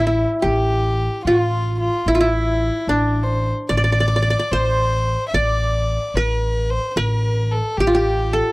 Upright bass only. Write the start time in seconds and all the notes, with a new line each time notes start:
Already playing: A1
0.44 A1
1.25 A1
2.06 A1
2.87 A1
3.70 A1
4.51 A1
5.34 A1
6.14 A1
6.96 A1
7.78 A1